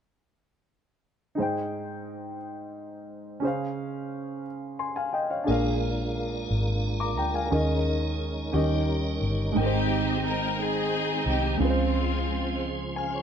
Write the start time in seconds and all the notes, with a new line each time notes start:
1.35 G#2 D#4 G#4
1.40 C5 G5
3.40 C#3 C#4 G#4
3.45 C5 F5
4.79 G#5 C6
4.96 F5 G#5
5.13 D#5 G5
5.30 C#5 F5
5.44 A#2 D4 G#4 A4
5.48 A#1 G#3 D4 F4 A#4 F5
5.55 A#4
6.50 G#1
7.00 A#5 D6
7.18 D2 G5 A#5
7.35 F5 G#5
7.50 D#2 D#3 G#3 C#4 D#4 G#4 A#4 D#5
8.52 D#2 D#3 G3 C#4 D#4 G4 A#4 D#5
9.22 G1
9.52 G#2 G#3 D#4
9.56 G#1 D#3 G#3 C4 D#4 G4 A#4 G5
9.66 C5
10.27 A#4
10.60 C4 D#4 G#4
11.26 C2 G4
11.57 C#2 C#3 F3 G#3 C4 G#4 C5
11.62 G#3 C4 F4 B4
11.70 C5
12.96 F5 G#5
13.15 C#5